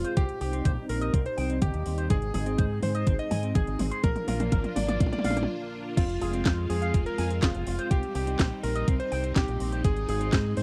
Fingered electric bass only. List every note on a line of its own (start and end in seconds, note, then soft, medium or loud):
0.17 0.27 C2 medium
0.41 0.61 C2 medium
0.65 0.75 A#1 loud
0.89 1.10 A#1 medium
1.14 1.24 C2 medium
1.38 1.58 C2 medium
1.62 1.72 D#2 medium
1.74 1.84 D#2 medium
1.86 2.07 D#2 medium
2.10 2.31 G#1 medium
2.35 2.55 G#1 loud
2.59 2.79 G#2 medium
2.83 3.03 G#2 loud
3.07 3.17 G#1 loud
3.31 3.52 G#2 medium
3.55 3.66 G#1 medium
3.68 3.78 G#1 loud
3.80 3.90 G#1 loud
4.04 4.14 A#1 medium
4.28 4.49 A#1 medium
4.52 4.63 G#1 loud
4.77 4.97 G#1 medium
5.01 5.11 A#1 loud
5.25 5.45 A#1 medium
5.98 6.18 F1 medium
6.22 6.42 F1 loud
6.46 6.66 F2 medium
6.70 6.91 F2 loud
6.94 7.04 F1 loud
7.19 7.39 F2 medium
7.43 7.53 F1 medium
7.55 7.65 F1 medium
7.67 7.77 F1 loud
7.91 8.01 C2 medium
8.15 8.36 C2 medium
8.39 8.50 A#1 loud
8.64 8.84 A#1 medium
8.88 8.98 C2 medium
9.12 9.33 C2 medium
9.36 9.46 A#1 medium
9.48 9.59 A#1 medium
9.61 9.81 A#1 medium
9.85 10.05 G#1 medium
10.09 10.29 G#1 loud
10.33 10.53 G#2 loud
10.57 10.63 G#2 loud